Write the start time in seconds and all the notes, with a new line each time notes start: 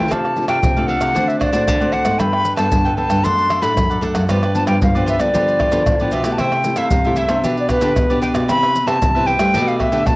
Already playing: E3 A3 D4 F4 G5
0.10 C3 D4 A4 D5 F5 A5, pandeiro, tamborim, maracas, surdo
0.24 A4 D5 F5, pandeiro, tamborim, maracas
0.36 A3 D4 F4, pandeiro, maracas
0.48 C3 D4 A4 D5 F5 G5, pandeiro, tamborim, maracas
0.63 C3, pandeiro, maracas, surdo
0.76 A3 D4 F4 A4 D5 F5, pandeiro, maracas
0.87 D4 A4 D5 F5 F#5, pandeiro
1.00 C3 A4 D5 F5, pandeiro, tamborim, maracas
1.14 D3 A3 C4 D4 F#4 C5 D5 F#5, pandeiro, maracas, surdo
1.28 E5, pandeiro, maracas
1.39 D4 C5 D5 F#5, pandeiro, tamborim, maracas, surdo
1.52 A2 A3 C4 D4 F#4 C5 D5 F#5, pandeiro, maracas
1.67 A2 D3, pandeiro, tamborim, maracas, surdo
1.80 A3 C4 F#4 C5 D5 F#5, pandeiro, maracas
1.92 D4 C5 D5 F#5, pandeiro
2.05 G#2 B3 D4 A4 C5 D5 F#5, pandeiro, tamborim, maracas
2.19 G2 G3 D4 A4 B4 G5 B5, pandeiro, tamborim, maracas, surdo
2.33 A4 B4 G5, pandeiro, tamborim, maracas
2.45 pandeiro, maracas
2.56 G2 B3 D4 A4 B4 G5 A5, pandeiro, tamborim, maracas
2.72 G2 D3, pandeiro, maracas, surdo
2.85 A4 B4 G5, pandeiro, maracas
2.97 B3 D4 A4 B4 G5 A5, pandeiro
3.09 G2 A4 B4 G5, pandeiro, tamborim, maracas
3.23 F#2 F#3 A3 D4 A4 D5 F#5 C6, pandeiro, maracas, surdo
3.38 pandeiro, maracas
3.49 D4 A4 D5 F#5, pandeiro, tamborim, maracas
3.61 A2 A3 D4 A4 D5 F#5 B5, pandeiro, maracas
3.77 F#2 F#3, pandeiro, tamborim, maracas, surdo
3.90 A4 D5 F#5, pandeiro, maracas
4.01 A3 D4 A4 D5 F#5, pandeiro, maracas
4.14 F#2 A4 D5 F#5, pandeiro, tamborim, maracas
4.28 G2 F3 B3 D4 F4 G4 B4 D5, pandeiro, tamborim, maracas, surdo
4.43 G4 B4 D5, pandeiro, tamborim, maracas
4.54 F3 B3 D4 A5, pandeiro, maracas
4.67 G2 F4 G4 B4 D5 G5, pandeiro, tamborim, maracas
4.82 G2 D3 F5, pandeiro, maracas, surdo
4.95 F3 B3 D4 G4 B4 D5, pandeiro, maracas
5.06 F4 G4 B4 D5 E5, pandeiro, maracas
5.19 D3 F3 B3 D4 G4 B4 D5, pandeiro, tamborim, maracas
5.34 G2 D3 F3 B3 D4 F4 G4 B4 D5, pandeiro, maracas, surdo
5.48 pandeiro, maracas
5.59 F4 G4 B4 D5, pandeiro, tamborim, surdo
5.72 D3 F3 B3 D4 F4 G4 B4 D5, pandeiro, maracas
5.86 A2 D3, pandeiro, tamborim, maracas, surdo
6.00 F3 B3 D4 G4 B4 D5, pandeiro, maracas
6.12 B2 F4 G4 B4 D5 E5, pandeiro, maracas
6.24 A3 E4 G4 B4 D5, pandeiro, tamborim, maracas
6.32 A5
6.38 C3 E4 A4 C5 E5 G5, pandeiro, tamborim, maracas, surdo
6.52 A4 C5 E5, pandeiro, tamborim, maracas
6.64 A3 E4 G4, pandeiro, maracas
6.76 C3 E4 A4 C5 E5 F5, pandeiro, tamborim, maracas
6.91 G2 C3, pandeiro, maracas, surdo
7.04 A3 E4 G4 A4 C5 E5, pandeiro, maracas
7.16 E4 A4 C5 E5, pandeiro, maracas
7.29 C3 B3 D4 G4 A4 C5 E5, pandeiro, tamborim, maracas
7.44 B2 D4 G4 B4 D5, pandeiro, maracas, surdo
7.57 D5, pandeiro, maracas
7.69 D4 G4 B4 D5, pandeiro, tamborim, maracas, surdo
7.81 D3 B3 D4 G4 B4 D5, pandeiro, maracas
7.96 B2, pandeiro, tamborim, maracas, surdo
8.10 B3 D4 G4 B4 D5, pandeiro, maracas
8.22 D4 G4 B4 D5 G5, pandeiro, maracas
8.34 B2 G4 B4 D5, pandeiro, tamborim, maracas
8.48 C3 B3 E4 G4 B4 C5 E5 B5, pandeiro, tamborim, maracas, surdo
8.62 B4 C5 E5, pandeiro, tamborim, maracas
8.75 pandeiro, maracas
8.86 C3 B3 E4 G4 B4 C5 E5 A5, pandeiro, tamborim, maracas
9.02 G2 C3, pandeiro, maracas, surdo
9.15 B3 E4 G4 B4 C5 E5, pandeiro, maracas
9.27 G4 B4 C5 E5 G5, pandeiro
9.39 G3 A3 D4 G4 B4 C5 E5, pandeiro, tamborim, maracas
9.54 B2 G4 A4 B4 D5, pandeiro, maracas, surdo
9.68 F5, pandeiro, maracas
9.79 G4 A4 B4 D5 E5, pandeiro, tamborim, surdo
9.92 D3 A3 D4 G4 A4 B4 D5, pandeiro, maracas
10.06 B2 A5, pandeiro, tamborim, maracas, surdo